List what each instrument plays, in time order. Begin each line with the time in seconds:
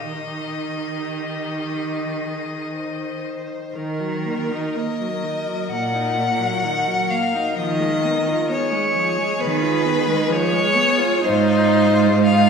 Already playing: cello D#3, viola D#4, violin G4 D#5
0.72 violin G4
2.25 violin G#4
2.75 violin C5
3.75 viola D#3, cello D#3, violin A#4
4.00 viola F#3
4.25 viola A#3
4.52 viola D#4
4.76 viola A#3, violin D#5
5.00 viola F#3
5.24 viola D#3
5.47 viola F#3
5.70 cello A#2, viola A#3, violin F#5
5.94 viola D#4
6.17 viola A#3
6.39 viola F#3
6.63 viola D#3
6.88 viola F#3
7.10 viola A#3, violin F5
7.34 viola D#4
7.57 cello D#3, viola F3, violin D#5
7.80 viola G#3
8.04 viola B3
8.27 viola F4
8.49 viola B3, violin G#4 C#5
8.72 viola G#3
8.96 viola F3
9.18 viola G#3
9.40 cello D#3, viola B3, violin B4
9.61 viola F4
9.84 viola B3
10.07 viola G#3
10.28 viola F3, violin C#5
10.53 viola G#3
10.75 viola B3
10.98 viola F4
11.22 cello G#2, viola D#4, violin C5
11.26 violin F4
12.23 viola D#4, violin F4 F5